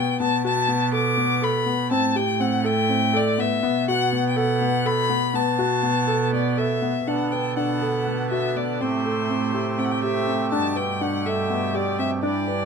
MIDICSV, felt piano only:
0, 0, Header, 1, 2, 480
1, 0, Start_track
1, 0, Tempo, 491400
1, 195, Time_signature, 7, 3, 24, 8
1, 12358, End_track
2, 0, Start_track
2, 0, Title_t, "Felt piano"
2, 0, Program_c, 0, 0
2, 0, Note_on_c, 0, 59, 65
2, 161, Note_off_c, 0, 59, 0
2, 194, Note_on_c, 0, 59, 78
2, 404, Note_off_c, 0, 59, 0
2, 435, Note_on_c, 0, 66, 61
2, 645, Note_off_c, 0, 66, 0
2, 666, Note_on_c, 0, 59, 63
2, 880, Note_off_c, 0, 59, 0
2, 900, Note_on_c, 0, 69, 67
2, 1116, Note_off_c, 0, 69, 0
2, 1145, Note_on_c, 0, 59, 63
2, 1359, Note_off_c, 0, 59, 0
2, 1388, Note_on_c, 0, 69, 71
2, 1600, Note_off_c, 0, 69, 0
2, 1622, Note_on_c, 0, 59, 63
2, 1837, Note_off_c, 0, 59, 0
2, 1864, Note_on_c, 0, 60, 78
2, 2078, Note_off_c, 0, 60, 0
2, 2106, Note_on_c, 0, 67, 70
2, 2319, Note_off_c, 0, 67, 0
2, 2345, Note_on_c, 0, 60, 69
2, 2558, Note_off_c, 0, 60, 0
2, 2580, Note_on_c, 0, 69, 72
2, 2796, Note_off_c, 0, 69, 0
2, 2824, Note_on_c, 0, 60, 64
2, 3038, Note_off_c, 0, 60, 0
2, 3061, Note_on_c, 0, 69, 78
2, 3275, Note_off_c, 0, 69, 0
2, 3302, Note_on_c, 0, 59, 74
2, 3515, Note_off_c, 0, 59, 0
2, 3544, Note_on_c, 0, 59, 83
2, 3755, Note_off_c, 0, 59, 0
2, 3792, Note_on_c, 0, 66, 69
2, 3999, Note_off_c, 0, 66, 0
2, 4029, Note_on_c, 0, 59, 68
2, 4237, Note_off_c, 0, 59, 0
2, 4261, Note_on_c, 0, 69, 70
2, 4472, Note_off_c, 0, 69, 0
2, 4504, Note_on_c, 0, 59, 67
2, 4713, Note_off_c, 0, 59, 0
2, 4739, Note_on_c, 0, 69, 75
2, 4950, Note_off_c, 0, 69, 0
2, 4975, Note_on_c, 0, 59, 70
2, 5187, Note_off_c, 0, 59, 0
2, 5214, Note_on_c, 0, 59, 80
2, 5427, Note_off_c, 0, 59, 0
2, 5457, Note_on_c, 0, 66, 68
2, 5669, Note_off_c, 0, 66, 0
2, 5694, Note_on_c, 0, 59, 64
2, 5908, Note_off_c, 0, 59, 0
2, 5932, Note_on_c, 0, 69, 69
2, 6148, Note_off_c, 0, 69, 0
2, 6179, Note_on_c, 0, 59, 60
2, 6393, Note_off_c, 0, 59, 0
2, 6423, Note_on_c, 0, 69, 67
2, 6637, Note_off_c, 0, 69, 0
2, 6661, Note_on_c, 0, 59, 63
2, 6878, Note_off_c, 0, 59, 0
2, 6910, Note_on_c, 0, 62, 64
2, 7124, Note_off_c, 0, 62, 0
2, 7157, Note_on_c, 0, 71, 55
2, 7369, Note_off_c, 0, 71, 0
2, 7392, Note_on_c, 0, 62, 55
2, 7607, Note_off_c, 0, 62, 0
2, 7635, Note_on_c, 0, 69, 62
2, 7849, Note_off_c, 0, 69, 0
2, 7881, Note_on_c, 0, 59, 56
2, 8093, Note_off_c, 0, 59, 0
2, 8122, Note_on_c, 0, 66, 65
2, 8333, Note_off_c, 0, 66, 0
2, 8362, Note_on_c, 0, 59, 57
2, 8573, Note_off_c, 0, 59, 0
2, 8601, Note_on_c, 0, 60, 72
2, 8812, Note_off_c, 0, 60, 0
2, 8846, Note_on_c, 0, 69, 55
2, 9054, Note_off_c, 0, 69, 0
2, 9082, Note_on_c, 0, 60, 59
2, 9291, Note_off_c, 0, 60, 0
2, 9322, Note_on_c, 0, 67, 63
2, 9530, Note_off_c, 0, 67, 0
2, 9555, Note_on_c, 0, 60, 59
2, 9765, Note_off_c, 0, 60, 0
2, 9801, Note_on_c, 0, 67, 69
2, 10008, Note_off_c, 0, 67, 0
2, 10034, Note_on_c, 0, 60, 62
2, 10244, Note_off_c, 0, 60, 0
2, 10276, Note_on_c, 0, 62, 75
2, 10485, Note_off_c, 0, 62, 0
2, 10509, Note_on_c, 0, 71, 61
2, 10721, Note_off_c, 0, 71, 0
2, 10756, Note_on_c, 0, 62, 59
2, 10965, Note_off_c, 0, 62, 0
2, 10997, Note_on_c, 0, 69, 65
2, 11205, Note_off_c, 0, 69, 0
2, 11233, Note_on_c, 0, 59, 55
2, 11443, Note_off_c, 0, 59, 0
2, 11469, Note_on_c, 0, 67, 68
2, 11680, Note_off_c, 0, 67, 0
2, 11711, Note_on_c, 0, 60, 60
2, 11921, Note_off_c, 0, 60, 0
2, 11944, Note_on_c, 0, 62, 74
2, 12158, Note_off_c, 0, 62, 0
2, 12185, Note_on_c, 0, 71, 56
2, 12358, Note_off_c, 0, 71, 0
2, 12358, End_track
0, 0, End_of_file